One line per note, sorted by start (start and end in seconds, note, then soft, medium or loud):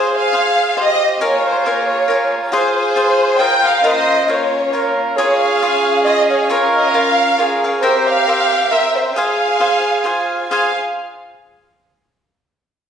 0.00 1.18 F4 medium
0.00 0.32 G#4 medium
0.00 0.73 G#4 medium
0.00 0.11 C5 medium
0.00 0.32 C5 medium
0.00 1.19 C5 medium
0.00 0.34 F5 medium
0.00 1.18 F5 medium
0.00 0.34 G#5 medium
0.17 0.79 F5 medium
0.33 0.77 G#4 medium
0.33 0.76 C5 medium
0.33 0.78 F5 medium
0.33 1.21 G#5 medium
0.77 1.24 G4 medium
0.77 1.21 C5 medium
0.77 1.15 D#5 loud
0.77 1.21 F5 medium
1.17 2.50 A#3 medium
1.17 1.21 D#5 medium
1.21 2.54 F4 medium
1.21 2.51 G#4 medium
1.21 1.65 A#4 medium
1.21 1.64 C#5 medium
1.21 2.51 C#5 medium
1.21 1.46 C#5 medium
1.21 1.66 F5 medium
1.21 1.67 G#5 medium
1.47 1.66 C5 medium
1.66 2.07 A#4 medium
1.66 1.89 A#4 medium
1.66 2.08 C#5 medium
1.66 2.10 F5 medium
1.66 2.09 G#5 medium
1.88 2.29 C#5 medium
2.08 2.52 A#4 medium
2.08 2.52 C#5 medium
2.08 2.53 F5 medium
2.08 2.53 G#5 medium
2.51 3.82 F4 medium
2.51 2.96 F4 medium
2.51 2.95 G#4 medium
2.51 3.42 G#4 loud
2.51 3.82 C5 medium
2.51 2.74 C5 medium
2.51 2.95 C5 medium
2.51 2.97 F5 medium
2.51 3.82 G#5 medium
2.75 3.36 C5 loud
2.96 3.39 F4 medium
2.96 3.39 G#4 medium
2.96 3.39 C5 medium
2.96 3.40 F5 medium
3.39 3.64 F4 medium
3.39 3.63 G#4 medium
3.39 3.84 A#4 loud
3.39 3.63 C5 medium
3.39 3.62 F5 medium
3.39 3.63 G5 loud
3.63 3.84 G#4 soft
3.63 3.84 C5 soft
3.63 3.83 F5 soft
3.63 3.85 F5 medium
3.83 5.16 A#3 medium
3.83 5.16 C#4 medium
3.83 4.28 F4 medium
3.83 5.16 F4 medium
3.83 4.28 A#4 medium
3.83 4.44 C5 loud
3.83 4.29 D#5 loud
3.83 4.29 F5 medium
4.28 4.73 F4 medium
4.28 4.72 A#4 medium
4.28 4.74 C#5 medium
4.28 4.95 C#5 medium
4.28 4.74 F5 medium
4.73 5.18 F4 soft
4.73 5.17 A#4 loud
4.73 5.18 A#4 medium
4.73 5.18 C#5 medium
4.73 5.19 F5 medium
5.16 7.81 C#4 medium
5.16 5.62 F4 medium
5.16 6.52 G#4 loud
5.16 6.50 G#4 medium
5.16 5.61 G#4 medium
5.16 5.39 C#5 medium
5.16 5.62 C#5 medium
5.16 7.81 F5 medium
5.16 5.63 F5 medium
5.38 6.04 F5 medium
5.62 6.05 F4 medium
5.62 6.06 G#4 medium
5.62 6.06 C#5 medium
5.62 6.07 F5 medium
6.05 6.30 F4 medium
6.05 6.30 G#4 medium
6.05 6.30 C#5 medium
6.05 6.28 D#5 loud
6.05 6.29 F5 medium
6.30 6.49 G#4 soft
6.30 6.72 C#5 medium
6.30 6.49 C#5 soft
6.30 6.50 F5 soft
6.49 6.93 F4 medium
6.49 6.94 A#4 medium
6.49 7.39 A#4 loud
6.49 9.14 A#4 medium
6.49 6.94 C#5 medium
6.49 6.95 F5 medium
6.75 6.94 D#5 medium
6.91 7.37 F4 medium
6.91 7.38 A#4 medium
6.91 7.61 F5 loud
6.95 7.38 C#5 medium
6.95 7.39 F5 medium
7.38 7.63 F4 medium
7.38 7.81 G#4 medium
7.38 7.63 A#4 soft
7.38 7.63 C#5 medium
7.38 7.63 F5 medium
7.64 7.81 A#4 soft
7.64 7.83 C#5 medium
7.64 7.83 F5 medium
7.82 9.14 C4 medium
7.82 8.87 G4 medium
7.82 8.26 A#4 medium
7.82 8.05 C5 loud
7.82 8.28 C5 medium
7.82 8.27 E5 medium
7.82 9.14 G5 medium
7.82 8.28 G5 medium
8.07 8.72 F5 loud
8.27 8.51 A#4 medium
8.27 8.52 C5 medium
8.27 8.52 E5 medium
8.27 8.51 G5 medium
8.52 8.70 C5 soft
8.52 8.71 E5 soft
8.52 8.71 G5 soft
8.71 9.16 A#4 medium
8.71 9.17 C5 medium
8.71 8.96 E5 loud
8.71 9.16 E5 medium
8.71 9.16 G5 medium
8.96 9.16 C5 medium
9.14 10.49 F4 medium
9.14 9.60 G#4 medium
9.14 10.08 G#4 loud
9.14 10.49 C5 medium
9.14 9.60 C5 medium
9.14 10.27 F5 medium
9.14 9.60 F5 medium
9.14 10.49 G#5 medium
9.18 9.61 G#5 medium
9.60 10.03 G#4 medium
9.60 10.04 C5 medium
9.60 10.05 F5 medium
9.60 10.06 G#5 medium
10.04 10.50 F4 medium
10.04 10.51 G#4 medium
10.04 10.51 C5 medium
10.04 10.52 F5 medium
10.04 10.53 G#5 medium
10.50 10.75 F4 medium
10.50 10.74 G#4 medium
10.50 10.71 G#4 medium
10.50 10.74 C5 medium
10.50 10.71 C5 medium
10.50 10.73 F5 medium
10.50 10.72 F5 medium
10.50 10.74 G#5 medium
10.50 10.72 G#5 medium